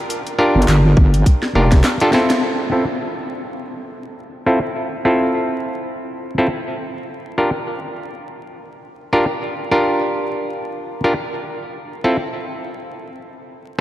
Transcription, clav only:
0.39 D4 F4 G4 A#4
1.55 D4 F4 G4 A#4
2.01 D4 F4 G4 A4
2.14 C4 E4 F4 A4
2.72 C4 E4 F4 A4
4.46 C4 E4 F4 A4
5.05 C4 E4 F4 A4
6.38 C4 E4 F4 A4
7.38 D4 F4 G4 A#4
9.13 D4 F4 G4 A#4
9.71 D4 F4 G4 A#4
11.04 D4 F4 G4 A#4
12.04 C4 E4 F4 A4

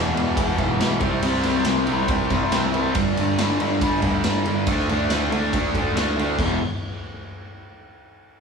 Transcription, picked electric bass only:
Already playing: E1
0.14 E1
0.38 E1
0.59 B1
0.80 B1
1.01 C2
1.22 C2
1.45 C2
1.67 C2
1.88 C2
2.09 C2
2.31 C2
2.53 C2
2.76 C2
2.95 G1
3.18 G1
3.39 G1
3.60 G1
3.81 G1
4.03 D2
4.25 G1
4.46 G1
4.68 D2
4.89 D2
5.09 D2
5.30 D2
5.54 D2
5.75 D2
5.96 D2
6.16 D2
6.38 E1

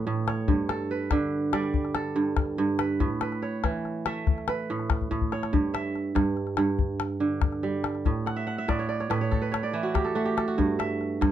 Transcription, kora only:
Already playing: E3 A3 B4
0.07 A2
0.28 C#5
0.48 G2
0.70 A4
0.91 B4
1.12 D3
1.53 G3 D5
1.95 A4
2.16 G2
2.58 G2
2.79 B4
3.00 A2
3.22 B4
3.42 C#5
3.64 E3
4.06 A3 E5
4.48 B4
4.70 A2
5.11 A2
5.33 C#5
5.53 G2
5.74 E5
6.15 G2
6.58 G2
7.20 D3
7.63 G3
8.06 A2
8.26 F#5
8.36 E5
8.47 F#5
8.58 E5
8.68 A2 D5
8.79 C#5
8.89 D5
9.00 C#5
9.10 A2 B4
9.21 C#5
9.31 A4
9.42 B4
9.52 C#5
9.63 D5
9.73 E3 E4
9.83 F#4
9.94 G4
10.04 A4
10.15 A3 F#4
10.25 G4
10.37 A4
10.48 F#4
10.58 G2
10.79 E5
11.21 G2

